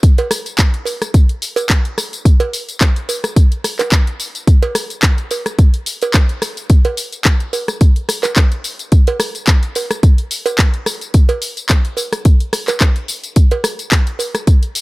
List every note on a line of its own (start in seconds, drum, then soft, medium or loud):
0.03 kick loud
0.03 closed hi-hat medium
0.03 tambourine soft
0.18 closed hi-hat soft
0.18 cowbell medium
0.31 cross-stick medium
0.31 open hi-hat loud
0.31 tambourine medium
0.46 closed hi-hat soft
0.46 tambourine soft
0.58 kick loud
0.58 clap loud
0.58 closed hi-hat medium
0.58 tambourine soft
0.74 closed hi-hat soft
0.85 open hi-hat medium
0.85 tambourine medium
0.85 cowbell medium
1.02 cross-stick medium
1.02 closed hi-hat soft
1.02 tambourine soft
1.14 kick loud
1.14 closed hi-hat medium
1.14 tambourine soft
1.29 closed hi-hat soft
1.42 open hi-hat loud
1.42 tambourine medium
1.56 closed hi-hat soft
1.56 tambourine soft
1.56 cowbell loud
1.70 kick loud
1.70 clap loud
1.70 closed hi-hat medium
1.70 tambourine soft
1.85 closed hi-hat soft
1.98 cross-stick medium
1.98 open hi-hat medium
1.98 tambourine medium
2.13 closed hi-hat soft
2.13 tambourine soft
2.25 kick loud
2.25 closed hi-hat medium
2.25 tambourine soft
2.40 closed hi-hat soft
2.40 cowbell loud
2.53 open hi-hat loud
2.53 tambourine medium
2.69 closed hi-hat soft
2.69 tambourine soft
2.81 kick loud
2.81 clap loud
2.81 closed hi-hat medium
2.81 tambourine soft
2.96 closed hi-hat soft
3.09 open hi-hat loud
3.09 tambourine medium
3.09 cowbell medium
3.24 cross-stick medium
3.24 closed hi-hat soft
3.24 tambourine soft
3.36 kick loud
3.36 closed hi-hat medium
3.36 tambourine soft
3.52 closed hi-hat soft
3.64 cross-stick medium
3.64 open hi-hat loud
3.64 tambourine medium
3.79 clap soft
3.79 closed hi-hat soft
3.79 tambourine soft
3.79 cowbell medium
3.92 kick loud
3.92 clap loud
3.92 closed hi-hat medium
3.92 tambourine soft
4.07 closed hi-hat soft
4.20 open hi-hat loud
4.20 tambourine medium
4.35 closed hi-hat soft
4.35 tambourine soft
4.47 kick loud
4.47 closed hi-hat medium
4.47 tambourine soft
4.63 closed hi-hat soft
4.63 cowbell loud
4.75 cross-stick medium
4.75 open hi-hat loud
4.75 tambourine medium
4.90 closed hi-hat soft
4.90 tambourine soft
5.02 kick loud
5.02 clap loud
5.02 closed hi-hat medium
5.02 tambourine soft
5.18 closed hi-hat soft
5.31 open hi-hat loud
5.31 tambourine medium
5.31 cowbell medium
5.46 cross-stick medium
5.46 closed hi-hat soft
5.46 tambourine soft
5.59 kick loud
5.59 closed hi-hat medium
5.59 tambourine soft
5.74 closed hi-hat soft
5.86 open hi-hat loud
5.86 tambourine medium
6.02 closed hi-hat soft
6.02 tambourine soft
6.02 cowbell loud
6.14 kick loud
6.14 clap loud
6.14 closed hi-hat medium
6.14 tambourine soft
6.29 closed hi-hat soft
6.42 cross-stick medium
6.42 open hi-hat loud
6.42 tambourine medium
6.57 closed hi-hat soft
6.57 tambourine soft
6.70 kick loud
6.70 closed hi-hat medium
6.70 tambourine soft
6.85 closed hi-hat soft
6.85 cowbell medium
6.97 open hi-hat loud
6.97 tambourine medium
7.13 closed hi-hat soft
7.13 tambourine soft
7.25 kick loud
7.25 clap loud
7.25 closed hi-hat medium
7.25 tambourine soft
7.40 closed hi-hat soft
7.53 open hi-hat medium
7.53 tambourine medium
7.53 cowbell medium
7.68 cross-stick medium
7.68 closed hi-hat soft
7.68 tambourine soft
7.81 kick loud
7.81 closed hi-hat medium
7.81 tambourine soft
7.96 closed hi-hat soft
8.09 cross-stick medium
8.09 open hi-hat loud
8.09 tambourine medium
8.23 clap soft
8.23 closed hi-hat soft
8.23 tambourine soft
8.23 cowbell loud
8.36 kick loud
8.36 clap loud
8.36 closed hi-hat medium
8.36 tambourine soft
8.52 closed hi-hat soft
8.64 open hi-hat loud
8.64 tambourine medium
8.79 closed hi-hat soft
8.79 tambourine soft
8.92 kick loud
8.92 closed hi-hat medium
8.92 tambourine soft
9.07 closed hi-hat soft
9.07 cowbell loud
9.20 cross-stick medium
9.20 open hi-hat loud
9.20 tambourine medium
9.35 closed hi-hat soft
9.35 tambourine soft
9.47 kick loud
9.47 clap loud
9.47 closed hi-hat medium
9.47 tambourine soft
9.63 closed hi-hat soft
9.75 open hi-hat medium
9.75 tambourine medium
9.75 cowbell medium
9.91 cross-stick medium
9.91 closed hi-hat soft
9.91 tambourine soft
10.03 kick loud
10.03 closed hi-hat medium
10.03 tambourine soft
10.18 closed hi-hat soft
10.31 open hi-hat loud
10.31 tambourine medium
10.46 closed hi-hat soft
10.46 tambourine soft
10.46 cowbell loud
10.58 kick loud
10.58 clap loud
10.58 closed hi-hat medium
10.58 tambourine soft
10.74 closed hi-hat soft
10.86 cross-stick medium
10.86 open hi-hat medium
10.86 tambourine medium
11.01 closed hi-hat soft
11.01 tambourine soft
11.14 kick loud
11.14 closed hi-hat medium
11.14 tambourine soft
11.29 closed hi-hat soft
11.29 cowbell medium
11.42 open hi-hat loud
11.42 tambourine medium
11.57 closed hi-hat soft
11.57 tambourine soft
11.69 kick loud
11.69 clap loud
11.69 closed hi-hat medium
11.69 tambourine soft
11.85 closed hi-hat soft
11.97 open hi-hat medium
11.97 tambourine medium
11.97 cowbell medium
12.13 cross-stick medium
12.13 closed hi-hat soft
12.13 tambourine soft
12.25 kick loud
12.25 closed hi-hat medium
12.25 tambourine soft
12.40 closed hi-hat soft
12.53 cross-stick medium
12.53 open hi-hat loud
12.53 tambourine medium
12.68 clap soft
12.68 closed hi-hat soft
12.68 tambourine soft
12.68 cowbell medium
12.81 kick loud
12.81 clap loud
12.81 closed hi-hat medium
12.81 tambourine soft
12.96 closed hi-hat soft
13.08 open hi-hat medium
13.08 tambourine medium
13.24 closed hi-hat soft
13.24 tambourine soft
13.36 kick loud
13.36 closed hi-hat medium
13.36 tambourine soft
13.51 closed hi-hat soft
13.51 cowbell medium
13.64 cross-stick medium
13.64 open hi-hat loud
13.64 tambourine medium
13.79 closed hi-hat soft
13.79 tambourine soft
13.92 kick loud
13.92 clap loud
13.92 closed hi-hat medium
13.92 tambourine soft
14.07 closed hi-hat soft
14.19 open hi-hat medium
14.19 tambourine medium
14.19 cowbell medium
14.35 cross-stick medium
14.35 closed hi-hat soft
14.35 tambourine soft
14.47 kick loud
14.47 closed hi-hat medium
14.47 tambourine soft
14.63 closed hi-hat soft
14.75 open hi-hat loud
14.75 tambourine medium